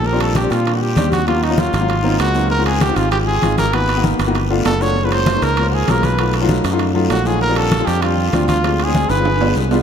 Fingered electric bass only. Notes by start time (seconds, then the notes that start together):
Already playing: A#1
0.51 A#2
0.96 D#2
1.74 G#1
2.20 C#2
2.96 G#1
3.43 G#1
4.19 G1
4.65 F#1
5.42 C#2
5.88 B1
6.64 F#2
7.10 A#1
7.87 F2
8.33 D2
9.10 G1
9.56 C2